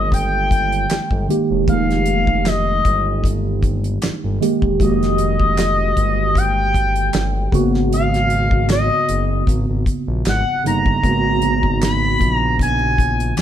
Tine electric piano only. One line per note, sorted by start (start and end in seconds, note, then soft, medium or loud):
0.00 1.28 D#3 medium
0.00 1.29 G#3 medium
0.00 1.30 A#3 medium
0.00 1.31 G4 medium
1.28 1.62 D#3 medium
1.28 1.62 G#3 medium
1.28 1.63 A#3 medium
1.28 1.63 G4 medium
1.67 3.01 D#3 medium
1.67 3.02 G#3 medium
1.67 3.02 A#3 medium
1.67 3.03 D#4 medium
4.40 4.74 D#3 medium
4.40 4.74 G#3 medium
4.40 4.75 A#3 medium
4.40 4.75 G4 medium
4.79 6.13 D#3 medium
4.79 6.14 G#3 medium
4.79 6.14 A#3 medium
4.79 4.88 F#4 medium
4.89 6.18 G4 medium
7.52 8.86 C#3 medium
7.52 8.86 A#3 medium
7.52 8.87 B3 medium
7.52 8.87 F#4 loud
10.63 10.97 C#3 medium
10.63 10.98 A#3 medium
10.63 10.98 B3 medium
10.63 10.99 D#4 medium
11.02 12.36 C#3 medium
11.02 12.37 A#3 medium
11.02 12.37 B3 medium
11.02 12.38 F#4 medium